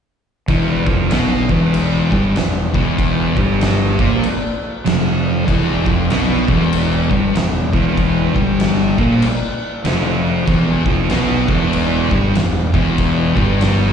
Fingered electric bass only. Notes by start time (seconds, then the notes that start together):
0.48 E1
0.87 F1
1.12 B1
1.50 E1
2.12 G1
2.36 E1
2.74 E1
3.37 G1
3.99 A#1
4.86 F1
5.48 E1
5.86 F1
6.11 B1
6.48 E1
7.11 G1
7.36 E1
7.73 E1
8.36 G1
8.99 A#1
9.85 F1
10.48 E1
10.86 F1
11.10 B1
11.48 E1
12.11 G1
12.36 E1
12.74 E1
13.37 G1